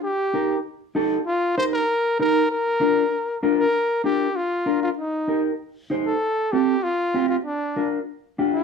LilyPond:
<<
  \new Staff \with { instrumentName = "Trumpet" } { \time 4/4 \key bes \major \tempo 4 = 194 g'2 r2 | f'4 c''8 bes'4. bes'4 | bes'2. r8 bes'8~ | bes'4 g'4 f'4. f'8 |
ees'4. r2 a'8~ | a'4 g'4 f'4. f'8 | d'4. r2 f'8 | }
  \new Staff \with { instrumentName = "Clean electric guitar" } { \time 4/4 \key bes \major r4 <ees' g' bes'>8 r4. <ees' g' a'>8 r8 | r4 <ees' g' bes'>8 r4. <ees' g' bes'>8 r8 | r4 <d' f' bes'>8 r4. <d' f' bes'>8 r8 | r4 <d' f' bes'>8 r4. <d' f' bes'>8 r8 |
r4 <ees' g' bes'>8 r4. <ees' g' c''>8 r8 | r4 <c' f' a'>8 r4. <c' f' g'>8 r8 | r4 <d' f' bes'>8 r4. <d' f' g'>8 r8 | }
>>